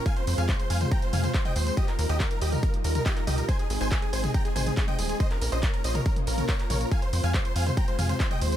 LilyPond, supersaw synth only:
\new Staff \with { instrumentName = "Supersaw synth" } { \time 4/4 \key f \minor \tempo 4 = 140 <f'' aes''>16 c''16 c''16 <f'' aes''>16 c''16 c''16 <f'' aes''>16 c''16 <g'' bes''>16 c''16 <f'' aes''>16 c''16 c''16 <ees'' g''>16 c''16 c''16 | <g' ees''>16 bes'16 bes'16 <g' ees''>16 bes'16 bes'16 <g' ees''>16 bes'16 bes'16 r16 bes'16 bes'16 <g' ees''>16 bes'16 <g' ees''>16 bes'16 | <c'' aes''>16 aes'16 aes'16 <c'' aes''>16 aes'16 aes'16 <c'' aes''>16 aes'16 <g'' bes''>16 aes'16 <c'' aes''>16 aes'16 aes'16 <ees'' g''>16 aes'16 aes'16 | <c'' ees''>16 bes'16 bes'16 <c'' ees''>16 bes'16 bes'16 <c'' ees''>16 bes'16 bes'16 r16 bes'16 bes'16 <bes' des''>16 bes'16 <bes' des''>16 bes'16 |
<f'' aes''>16 c''16 c''16 <f'' aes''>16 c''16 c''16 <f'' aes''>16 c''16 <g'' bes''>16 c''16 <f'' aes''>16 c''16 c''16 <ees'' g''>16 c''16 c''16 | }